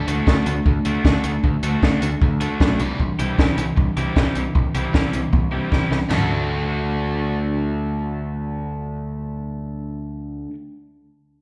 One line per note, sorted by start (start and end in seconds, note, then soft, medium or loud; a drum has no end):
0.06 0.20 D2 medium
0.06 0.24 D3 medium
0.06 0.25 A3 medium
0.06 0.26 A3 medium
0.06 0.27 D4 medium
0.06 0.27 F#4 medium
0.06 closed hi-hat medium
0.26 0.39 D2 medium
0.26 0.44 D3 medium
0.26 0.44 A3 medium
0.26 0.52 A3 medium
0.26 0.53 D4 medium
0.26 0.53 F#4 medium
0.26 kick loud
0.26 snare loud
0.46 0.59 D2 medium
0.46 0.63 D3 medium
0.46 0.64 A3 medium
0.46 closed hi-hat medium
0.66 0.78 D2 medium
0.66 0.83 D3 medium
0.66 0.83 A3 medium
0.66 kick medium
0.85 0.98 D2 medium
0.85 1.03 D3 medium
0.85 1.03 A3 medium
0.85 1.04 D4 medium
0.85 1.05 F#4 medium
0.85 closed hi-hat medium
1.05 1.17 D2 medium
1.05 1.22 D3 medium
1.05 1.30 A3 medium
1.05 1.22 A3 medium
1.05 1.30 D4 medium
1.05 1.30 F#4 medium
1.05 kick medium
1.05 snare loud
1.24 1.36 D2 medium
1.24 1.42 D3 medium
1.24 1.42 A3 medium
1.24 closed hi-hat medium
1.44 1.56 D2 medium
1.44 1.61 D3 medium
1.44 1.62 A3 medium
1.44 kick medium
1.63 1.75 D2 medium
1.63 1.81 D3 medium
1.63 1.81 A3 medium
1.63 1.82 D4 medium
1.63 1.82 F#4 loud
1.63 closed hi-hat medium
1.82 1.95 D2 medium
1.82 2.00 D3 medium
1.82 2.08 A3 medium
1.82 2.00 A3 medium
1.82 2.08 D4 medium
1.82 2.08 F#4 medium
1.82 kick loud
1.82 snare medium
2.02 2.14 D2 medium
2.02 2.20 D3 medium
2.02 2.20 A3 medium
2.02 closed hi-hat medium
2.22 2.46 D2 medium
2.22 2.39 D3 medium
2.22 2.40 A3 medium
2.22 kick loud
2.41 2.59 D3 soft
2.41 2.59 A3 medium
2.41 2.60 D4 medium
2.41 2.60 F#4 medium
2.41 closed hi-hat medium
2.60 2.72 B1 medium
2.60 2.78 D3 medium
2.60 2.80 A3 medium
2.60 2.78 A3 medium
2.60 2.80 D4 medium
2.60 2.80 F#4 medium
2.60 kick medium
2.60 snare medium
2.80 2.92 C2 medium
2.80 2.98 C3 medium
2.80 2.98 E3 medium
2.80 2.99 G3 medium
2.80 closed hi-hat medium
3.00 3.12 C2 medium
3.00 3.17 C3 medium
3.00 3.17 E3 medium
3.00 kick medium
3.19 3.31 C2 medium
3.19 3.36 C3 medium
3.19 3.36 E3 medium
3.19 3.38 G3 medium
3.19 3.38 C4 medium
3.19 3.39 E4 medium
3.19 3.38 G4 medium
3.19 closed hi-hat medium
3.38 3.50 C2 medium
3.38 3.56 C3 medium
3.38 3.56 E3 medium
3.38 3.64 G3 medium
3.38 3.64 C4 medium
3.38 3.64 E4 medium
3.38 3.64 G4 medium
3.38 kick medium
3.38 snare medium
3.57 3.70 C2 medium
3.57 3.75 C3 medium
3.57 3.75 E3 medium
3.57 closed hi-hat medium
3.76 3.89 C2 medium
3.76 3.94 C3 medium
3.76 3.94 E3 medium
3.76 kick medium
3.96 4.09 C2 medium
3.96 4.14 C3 medium
3.96 4.14 E3 medium
3.96 4.16 G3 medium
3.96 4.16 C4 medium
3.96 4.16 E4 medium
3.96 4.16 G4 medium
3.96 closed hi-hat medium
4.16 4.28 C2 medium
4.16 4.33 C3 medium
4.16 4.34 E3 medium
4.16 4.42 G3 medium
4.16 4.42 C4 medium
4.16 4.42 E4 medium
4.16 4.42 G4 medium
4.16 kick medium
4.16 snare medium
4.35 4.48 C2 medium
4.35 4.53 C3 medium
4.35 4.53 E3 medium
4.35 closed hi-hat medium
4.55 4.67 C2 medium
4.55 4.72 C3 medium
4.55 4.73 E3 medium
4.55 kick medium
4.75 4.87 C2 medium
4.75 4.92 C3 medium
4.75 4.92 E3 medium
4.75 4.93 G3 medium
4.75 4.94 C4 medium
4.75 4.94 E4 medium
4.75 4.94 G4 medium
4.75 closed hi-hat medium
4.93 5.06 C2 medium
4.93 5.11 C3 medium
4.93 5.11 E3 medium
4.93 5.20 G3 medium
4.93 5.20 C4 medium
4.93 5.20 E4 medium
4.93 5.20 G4 medium
4.93 kick loud
4.93 snare medium
5.13 5.26 C2 medium
5.13 5.31 C3 medium
5.13 5.31 E3 medium
5.13 closed hi-hat medium
5.33 5.57 C2 medium
5.33 5.50 C3 medium
5.33 5.50 E3 medium
5.33 kick medium
5.33 high tom soft
5.51 5.69 C3 medium
5.51 5.69 E3 medium
5.51 5.71 G3 medium
5.51 5.71 C4 medium
5.51 5.72 E4 medium
5.51 5.72 G4 medium
5.72 5.84 C2 medium
5.72 5.89 C3 medium
5.72 5.90 E3 medium
5.72 5.97 G3 medium
5.72 5.98 C4 medium
5.72 5.98 E4 medium
5.72 5.98 G4 medium
5.72 kick medium
5.72 snare medium
5.91 6.03 C2 medium
5.91 6.09 C3 medium
5.91 6.08 E3 medium
5.91 snare medium
6.09 10.46 D2 medium
6.09 10.49 D3 medium
6.09 10.50 A3 medium
6.09 10.51 D4 medium
6.09 10.53 F#4 medium
6.09 snare medium
6.09 floor tom medium
6.09 china medium
6.13 10.53 D4 medium
6.13 10.54 F#4 medium